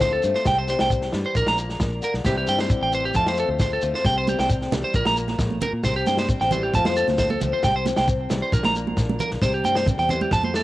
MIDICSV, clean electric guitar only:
0, 0, Header, 1, 3, 480
1, 0, Start_track
1, 0, Tempo, 448430
1, 492, Time_signature, 4, 2, 24, 8
1, 11382, End_track
2, 0, Start_track
2, 0, Title_t, "Clean electric guitar"
2, 0, Program_c, 0, 27
2, 15, Note_on_c, 0, 72, 84
2, 119, Note_off_c, 0, 72, 0
2, 136, Note_on_c, 0, 69, 72
2, 238, Note_off_c, 0, 69, 0
2, 381, Note_on_c, 0, 72, 77
2, 482, Note_off_c, 0, 72, 0
2, 506, Note_on_c, 0, 79, 103
2, 605, Note_off_c, 0, 79, 0
2, 626, Note_on_c, 0, 72, 73
2, 724, Note_off_c, 0, 72, 0
2, 748, Note_on_c, 0, 72, 73
2, 847, Note_off_c, 0, 72, 0
2, 867, Note_on_c, 0, 79, 82
2, 965, Note_off_c, 0, 79, 0
2, 1345, Note_on_c, 0, 72, 78
2, 1444, Note_off_c, 0, 72, 0
2, 1460, Note_on_c, 0, 70, 93
2, 1562, Note_off_c, 0, 70, 0
2, 1583, Note_on_c, 0, 82, 73
2, 1683, Note_off_c, 0, 82, 0
2, 2184, Note_on_c, 0, 70, 85
2, 2284, Note_off_c, 0, 70, 0
2, 2419, Note_on_c, 0, 67, 100
2, 2521, Note_off_c, 0, 67, 0
2, 2541, Note_on_c, 0, 67, 68
2, 2642, Note_off_c, 0, 67, 0
2, 2662, Note_on_c, 0, 79, 90
2, 2763, Note_off_c, 0, 79, 0
2, 2788, Note_on_c, 0, 72, 70
2, 2885, Note_off_c, 0, 72, 0
2, 3025, Note_on_c, 0, 79, 77
2, 3124, Note_off_c, 0, 79, 0
2, 3153, Note_on_c, 0, 72, 84
2, 3249, Note_off_c, 0, 72, 0
2, 3268, Note_on_c, 0, 67, 79
2, 3365, Note_off_c, 0, 67, 0
2, 3385, Note_on_c, 0, 81, 94
2, 3485, Note_off_c, 0, 81, 0
2, 3512, Note_on_c, 0, 72, 69
2, 3608, Note_off_c, 0, 72, 0
2, 3635, Note_on_c, 0, 69, 74
2, 3730, Note_off_c, 0, 69, 0
2, 3868, Note_on_c, 0, 72, 80
2, 3966, Note_off_c, 0, 72, 0
2, 3994, Note_on_c, 0, 69, 69
2, 4089, Note_off_c, 0, 69, 0
2, 4232, Note_on_c, 0, 72, 74
2, 4327, Note_off_c, 0, 72, 0
2, 4346, Note_on_c, 0, 79, 98
2, 4445, Note_off_c, 0, 79, 0
2, 4471, Note_on_c, 0, 72, 78
2, 4567, Note_off_c, 0, 72, 0
2, 4592, Note_on_c, 0, 67, 75
2, 4688, Note_off_c, 0, 67, 0
2, 4704, Note_on_c, 0, 79, 81
2, 4803, Note_off_c, 0, 79, 0
2, 5182, Note_on_c, 0, 72, 82
2, 5281, Note_off_c, 0, 72, 0
2, 5304, Note_on_c, 0, 70, 86
2, 5404, Note_off_c, 0, 70, 0
2, 5422, Note_on_c, 0, 82, 86
2, 5521, Note_off_c, 0, 82, 0
2, 6021, Note_on_c, 0, 70, 83
2, 6122, Note_off_c, 0, 70, 0
2, 6259, Note_on_c, 0, 72, 99
2, 6360, Note_off_c, 0, 72, 0
2, 6382, Note_on_c, 0, 67, 78
2, 6481, Note_off_c, 0, 67, 0
2, 6500, Note_on_c, 0, 79, 81
2, 6601, Note_off_c, 0, 79, 0
2, 6623, Note_on_c, 0, 72, 69
2, 6722, Note_off_c, 0, 72, 0
2, 6862, Note_on_c, 0, 79, 87
2, 6961, Note_off_c, 0, 79, 0
2, 6984, Note_on_c, 0, 72, 86
2, 7083, Note_off_c, 0, 72, 0
2, 7099, Note_on_c, 0, 67, 77
2, 7199, Note_off_c, 0, 67, 0
2, 7224, Note_on_c, 0, 81, 101
2, 7323, Note_off_c, 0, 81, 0
2, 7342, Note_on_c, 0, 72, 75
2, 7441, Note_off_c, 0, 72, 0
2, 7457, Note_on_c, 0, 69, 79
2, 7559, Note_off_c, 0, 69, 0
2, 7700, Note_on_c, 0, 72, 81
2, 7801, Note_off_c, 0, 72, 0
2, 7817, Note_on_c, 0, 69, 71
2, 7918, Note_off_c, 0, 69, 0
2, 8063, Note_on_c, 0, 72, 80
2, 8161, Note_off_c, 0, 72, 0
2, 8182, Note_on_c, 0, 79, 108
2, 8282, Note_off_c, 0, 79, 0
2, 8306, Note_on_c, 0, 72, 72
2, 8403, Note_off_c, 0, 72, 0
2, 8535, Note_on_c, 0, 79, 87
2, 8637, Note_off_c, 0, 79, 0
2, 9016, Note_on_c, 0, 72, 80
2, 9117, Note_off_c, 0, 72, 0
2, 9132, Note_on_c, 0, 70, 85
2, 9236, Note_off_c, 0, 70, 0
2, 9262, Note_on_c, 0, 82, 85
2, 9360, Note_off_c, 0, 82, 0
2, 9849, Note_on_c, 0, 70, 85
2, 9954, Note_off_c, 0, 70, 0
2, 10087, Note_on_c, 0, 72, 102
2, 10193, Note_off_c, 0, 72, 0
2, 10212, Note_on_c, 0, 67, 75
2, 10315, Note_off_c, 0, 67, 0
2, 10328, Note_on_c, 0, 79, 92
2, 10434, Note_off_c, 0, 79, 0
2, 10452, Note_on_c, 0, 72, 77
2, 10555, Note_off_c, 0, 72, 0
2, 10693, Note_on_c, 0, 79, 76
2, 10796, Note_off_c, 0, 79, 0
2, 10814, Note_on_c, 0, 72, 82
2, 10917, Note_off_c, 0, 72, 0
2, 10935, Note_on_c, 0, 67, 74
2, 11037, Note_off_c, 0, 67, 0
2, 11053, Note_on_c, 0, 81, 105
2, 11157, Note_off_c, 0, 81, 0
2, 11178, Note_on_c, 0, 72, 68
2, 11279, Note_off_c, 0, 72, 0
2, 11301, Note_on_c, 0, 69, 74
2, 11382, Note_off_c, 0, 69, 0
2, 11382, End_track
3, 0, Start_track
3, 0, Title_t, "Muted clean electric guitar strokes"
3, 8416, Note_on_c, 9, 29, 77
3, 8523, Note_off_c, 9, 29, 0
3, 11382, End_track
0, 0, End_of_file